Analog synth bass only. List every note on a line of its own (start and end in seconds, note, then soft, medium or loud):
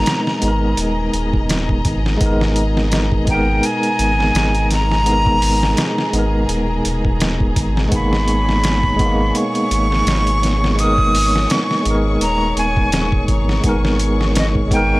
0.43 0.74 G#1 medium
0.78 1.10 D#1 medium
1.14 1.82 D#1 medium
1.85 2.17 G#1 loud
2.21 3.60 G#1 loud
3.99 4.31 G#1 medium
4.35 5.75 G#1 medium
6.13 6.45 G#1 medium
6.49 6.81 D#1 medium
6.85 7.53 D#1 medium
7.57 7.88 G#1 loud
7.92 9.32 G#1 loud
9.71 10.03 G#1 medium
10.06 11.46 G#1 medium
11.86 12.17 G#1 loud
12.21 12.53 D#1 medium
12.56 13.25 D#1 medium
13.28 13.60 G#1 loud
13.64 15.00 G#1 loud